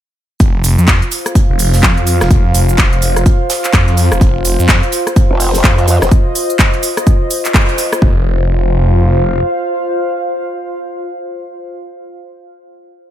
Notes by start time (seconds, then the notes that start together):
0.40 F1 F4, kick, closed hi-hat, shaker
0.52 C5
0.64 closed hi-hat, open hi-hat, shaker
0.78 F2, shaker
0.87 F5, kick, snare, clap, closed hi-hat, shaker
1.02 closed hi-hat
1.12 closed hi-hat, open hi-hat, shaker
1.26 cross-stick, closed hi-hat, shaker
1.35 kick, closed hi-hat, shaker
1.50 F1
1.59 open hi-hat, shaker
1.73 snare, open hi-hat, shaker
1.83 F2, kick, snare, clap, closed hi-hat, shaker
1.97 closed hi-hat
2.07 closed hi-hat, open hi-hat, shaker
2.21 F1, cross-stick, snare, shaker
2.31 kick, closed hi-hat, shaker
2.54 F1, closed hi-hat, open hi-hat, shaker
2.69 shaker
2.78 kick, snare, clap, closed hi-hat, shaker
2.93 F1, closed hi-hat
3.02 closed hi-hat, open hi-hat, shaker
3.16 cross-stick, closed hi-hat, shaker
3.26 kick, closed hi-hat, shaker
3.50 snare, closed hi-hat, open hi-hat, shaker
3.64 clap, closed hi-hat, shaker
3.73 F2, kick, cross-stick, clap, closed hi-hat, shaker
3.88 closed hi-hat
3.97 closed hi-hat, open hi-hat, shaker
4.12 F1, cross-stick, shaker
4.21 F1, kick, closed hi-hat, shaker
4.45 closed hi-hat, open hi-hat, shaker
4.59 F2, shaker
4.69 kick, snare, clap, closed hi-hat, shaker
4.83 closed hi-hat
4.92 closed hi-hat, open hi-hat, shaker
5.07 cross-stick, closed hi-hat, shaker
5.14 D#5, kick, closed hi-hat, shaker
5.31 F1
5.40 open hi-hat, shaker
5.54 snare, open hi-hat, shaker
5.64 F2, kick, snare, clap, closed hi-hat, shaker
5.78 closed hi-hat
5.88 closed hi-hat, open hi-hat, shaker
6.01 F1, cross-stick, snare, shaker
6.11 kick, closed hi-hat, shaker
6.35 open hi-hat, shaker
6.50 closed hi-hat, shaker
6.59 kick, clap, closed hi-hat, shaker
6.74 closed hi-hat
6.83 open hi-hat, shaker
6.97 cross-stick, closed hi-hat, shaker
7.07 kick, closed hi-hat, shaker
7.31 open hi-hat, shaker
7.45 clap, closed hi-hat, shaker
7.54 kick, cross-stick, clap, closed hi-hat, shaker
7.69 closed hi-hat
7.78 open hi-hat, shaker
7.93 cross-stick, shaker
8.02 F1 F4, kick
8.11 C5
8.18 F5